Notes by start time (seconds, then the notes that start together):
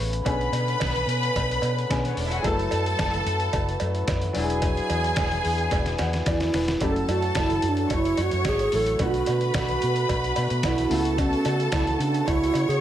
Already playing: C#3 A3 B3 G#4 B4
0.00 A1
0.13 closed hi-hat
0.24 B1 D3 B3 C#4 G#4 B4 B5, kick, closed hi-hat, cowbell
0.41 closed hi-hat
0.52 B2, closed hi-hat, cowbell
0.68 closed hi-hat
0.80 B1, kick, snare, closed hi-hat, cowbell
0.96 closed hi-hat
1.07 B2, closed hi-hat
1.23 closed hi-hat
1.36 B1, kick, closed hi-hat, cowbell
1.51 closed hi-hat
1.62 B2, closed hi-hat, cowbell
1.78 closed hi-hat
1.89 B2 D3 B3 C#4 G#4, kick, snare, closed hi-hat, cowbell
2.04 B3 B4, closed hi-hat
2.11 C#4 C#5
2.17 E1 D4 D5, open hi-hat
2.25 E4 E5
2.32 F#4 F#5, closed hi-hat
2.39 F#3 G#4 G#5
2.44 F#1 F#3 G#3 A3 E4 A4 A5, kick, closed hi-hat, cowbell
2.51 A3
2.59 closed hi-hat
2.71 F#2, closed hi-hat, cowbell
2.86 closed hi-hat
2.99 F#1, kick, snare, closed hi-hat, cowbell
3.14 closed hi-hat
3.27 F#2, closed hi-hat
3.40 closed hi-hat
3.53 F#1, kick, closed hi-hat, cowbell
3.69 closed hi-hat
3.80 F#2, closed hi-hat, cowbell
3.95 closed hi-hat
4.08 F#2, kick, snare, closed hi-hat, cowbell
4.22 closed hi-hat
4.33 E1 F#3 D4 E4 F#4 G#4 G#5, open hi-hat
4.42 G#4
4.50 closed hi-hat
4.62 kick, closed hi-hat, cowbell
4.77 closed hi-hat
4.90 E2, closed hi-hat, cowbell
5.04 closed hi-hat
5.16 E1, kick, snare, closed hi-hat, cowbell
5.32 closed hi-hat
5.45 E2, open hi-hat
5.58 closed hi-hat
5.71 E1, kick, snare, closed hi-hat, cowbell
5.86 snare, closed hi-hat
5.98 E2 F#5, snare, closed hi-hat, cowbell
6.13 snare, closed hi-hat
6.26 E2 E4 D5, kick, snare, closed hi-hat, cowbell
6.40 snare, closed hi-hat
6.54 E1 B4, snare, open hi-hat
6.68 snare, closed hi-hat
6.80 F#1 E3 F#3 A3 C#4 E4 F#4 G4 A4 A5, kick, closed hi-hat, cowbell
6.90 A4
6.96 closed hi-hat
7.09 F#2 F#4, closed hi-hat, cowbell
7.22 closed hi-hat
7.35 F#1, kick, snare, closed hi-hat, cowbell
7.39 E4
7.50 closed hi-hat
7.62 F#2, closed hi-hat
7.68 D4
7.77 closed hi-hat
7.90 F#1 C#5 C#6, kick, closed hi-hat, cowbell
7.95 E4
8.05 closed hi-hat
8.17 F#2, closed hi-hat, cowbell
8.22 F#4
8.31 F#2, closed hi-hat
8.45 G#1, kick, snare, closed hi-hat, cowbell
8.49 G#4
8.59 closed hi-hat
8.72 A1 F#3 A3 E4 A4, open hi-hat
8.86 closed hi-hat
8.98 B1 D3 A3 B3 F#4 B4 B5, kick, closed hi-hat, cowbell
9.04 F#4
9.14 closed hi-hat
9.26 B2, closed hi-hat, cowbell
9.41 closed hi-hat
9.54 B1, kick, snare, closed hi-hat, cowbell
9.58 F#4
9.69 closed hi-hat
9.82 B2, closed hi-hat
9.96 closed hi-hat
10.09 B1, kick, closed hi-hat, cowbell
10.24 closed hi-hat
10.36 B2, closed hi-hat, cowbell
10.50 B2, closed hi-hat
10.63 B1 E4, kick, snare, closed hi-hat, cowbell
10.78 closed hi-hat
10.89 C#2 C#3 A3 B3 F4 A4 A5, open hi-hat
10.99 F#4
11.05 closed hi-hat
11.18 C#4, kick, closed hi-hat, cowbell
11.33 closed hi-hat
11.45 C#3 F#4, closed hi-hat, cowbell
11.60 closed hi-hat
11.72 C#2 E4, kick, snare, closed hi-hat, cowbell
11.87 closed hi-hat
11.99 C#3 D4, closed hi-hat
12.14 closed hi-hat
12.27 C#2 E4 C#5 C#6, kick, closed hi-hat, cowbell
12.44 closed hi-hat
12.54 C#3, closed hi-hat, cowbell
12.69 C#3 G#4, closed hi-hat